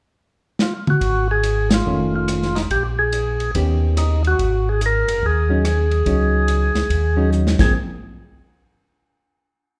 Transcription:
0.59 F4, snare
0.87 F#4, mid tom
1.01 G#1, kick, ride
1.31 G#4
1.43 hi-hat pedal, ride
1.71 F4, snare, ride
1.86 F1 D#3 A3 C#4
2.16 F4
2.28 cross-stick, hi-hat pedal, ride
2.43 snare
2.55 D#4, snare, ride
2.70 A#1 G4, kick, ride
2.99 G#4
3.13 hi-hat pedal, ride
3.40 ride
3.55 D#2 D#3 B3 C#4 G4, kick, ride
3.97 D#4, cross-stick, hi-hat pedal, ride
4.24 F#4, ride
4.39 G#1, kick, ride
4.69 G#4
4.81 hi-hat pedal, ride
4.86 A#4
5.08 F#1, ride
5.23 D#2 G#4, kick
5.49 F#3 C#4 D#4
5.65 cross-stick, hi-hat pedal, ride
5.91 ride
6.06 C#2 F#3 C#4 D#4, kick, ride
6.48 hi-hat pedal, ride
6.75 C#2, snare, ride
6.90 D#2, kick, ride
7.16 F#3 C#4 D#4
7.32 hi-hat pedal
7.47 snare
7.59 G#1 F3 A#3 C4 G#4, kick, snare, crash

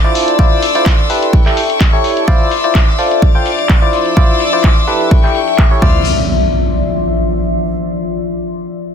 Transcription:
Already playing: D5 F5 A5 C6 D6 A6
0.04 E4 F4 C5 D5
0.15 D5 E5 C6 D6 E6, open hi-hat
0.28 closed hi-hat
0.39 E4 F4 C5 D5, kick, closed hi-hat
0.63 open hi-hat
0.75 E4 F4 C5 D5, closed hi-hat
0.86 kick, clap, closed hi-hat
1.10 E4 G4 A4 B4, open hi-hat
1.22 closed hi-hat
1.33 A4 G5 C#6, kick, closed hi-hat
1.46 E4 G4 A4 G5, clap
1.57 open hi-hat
1.70 closed hi-hat
1.81 kick, clap, closed hi-hat
1.93 E4 G4 A4 C#5
2.04 open hi-hat
2.17 closed hi-hat
2.28 E4 F4 C5 D5 C6 D6 E6, kick, closed hi-hat
2.46 D5
2.51 open hi-hat
2.64 E4 F4 C5 D5, closed hi-hat
2.71 C6
2.75 kick, clap, closed hi-hat
2.99 F4 A4 C5 D5, open hi-hat
3.11 closed hi-hat
3.22 F5 D6 A6, kick, closed hi-hat
3.35 F4 A4 C5 G5
3.46 open hi-hat
3.59 closed hi-hat
3.69 kick, clap, closed hi-hat
3.82 E4 F4 C5 D5
3.93 D5 E5 C6 D6 E6, open hi-hat
4.06 closed hi-hat
4.17 E4 F4 C5 D5, kick, closed hi-hat
4.40 open hi-hat
4.53 E4 F4 C5 D5, closed hi-hat
4.64 kick, clap, closed hi-hat
4.88 E4 G4 A4 B4, open hi-hat
5.00 closed hi-hat
5.11 A4 G5 C#6, kick, closed hi-hat
5.24 E4 G4 A4 G5, clap
5.35 open hi-hat
5.48 closed hi-hat
5.58 kick, clap
5.71 E4 G4 A4 C#5
5.82 D2 E4 F4 C5 D5 C6 E6 F6, kick, crash, impact
5.90 D5
6.21 E5
6.27 C6

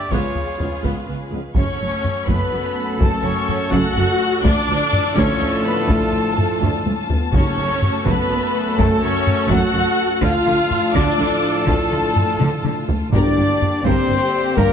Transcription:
Already playing: G3 D5 G5
0.10 C#2 G#3 B3 C#4 F4 G#4 B4 C#5 F5, taiko
0.35 taiko low
0.57 C#3 F3 G#3 B3, taiko low
0.83 C#2 B3, taiko
1.07 C#2 B3
1.31 C#2 C#3 F3 G#3 B3
1.54 F#1 F#2 F#3 A3 C#4 A4 C#5 F#5 C#6, taiko
1.58 C#4
1.80 F#1 F#2
2.04 taiko low-mid
2.27 F#1 F#2 B3 B4 B5, taiko
2.52 F#1 F#2
2.98 F#1 F#2 A3 A4 A5, taiko
3.23 F#1 F#2 C#4 C#5 C#6
3.49 taiko low-mid
3.70 F#1 F#2 F#4 F#5 F#6, taiko
3.95 F#1 F#2
4.42 D2 A2 D3 F3 D4 F4 A4 D5 A5 D6, taiko
4.46 A3
4.68 D2
4.93 taiko low-mid
5.16 D2 C#4 C#5 C#6, taiko
5.39 D2
5.63 B3 B4 B5
5.88 D2 A3 A4 A5, taiko
6.12 D2
6.38 taiko low-mid
6.60 D2 D4, taiko low-mid
6.84 D2 C#4, taiko high
7.10 B3, taiko low
7.32 F#1 F#2 F#3 A3 C#4 F#4 A4 C#5, taiko
7.36 C#6
7.57 F#1 F#2
7.82 taiko low-mid
8.05 F#1 F#2 B3 B4 B5, taiko
8.30 F#1 F#2
8.77 F#1 F#2 A3 A4 A5, taiko
9.00 F#1 F#2 C#4 C#5
9.05 C#6
9.27 taiko low-mid
9.49 F#1 F#2 F#4 F#5 F#6, taiko
9.73 F#1 F#2
10.21 D2 A2 D3 F3 A3 D4 F4 A4 F5 A5 F6, taiko
10.45 D2 D3
10.71 taiko low-mid
10.94 D2 D3 D4 D5 D6, taiko
11.18 D2 D3
11.66 D2 D3 A3 A4 A5, taiko
11.91 D2 D3
12.16 taiko low-mid
12.39 D2 D3, taiko mid
12.62 D2 D3, taiko mid
12.89 taiko low
13.11 G1 G2 D3 A#3 D4 G4 A#4 D5 G5, taiko
13.15 A#3
13.36 G1 G2 A#4
13.62 taiko low-mid
13.83 G1 G2 C4 G4 A#4 C5, taiko
14.09 G1 G2 A#4
14.56 G1 G2 A#3 A#4, taiko

